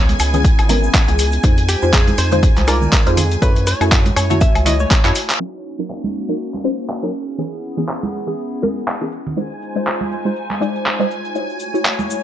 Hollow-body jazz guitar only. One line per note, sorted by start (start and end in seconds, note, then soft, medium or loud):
0.00 0.80 C#5 medium
1.69 1.93 G4 medium
1.94 2.19 G#4 medium
2.18 2.69 C5 loud
2.68 3.17 A#4 loud
3.17 3.42 G#4 medium
3.42 3.68 B4 loud
3.67 4.15 C#5 loud
4.16 4.40 C#5 loud
4.41 4.66 E5 loud
4.66 4.79 D#5 loud
4.80 5.13 C#5 medium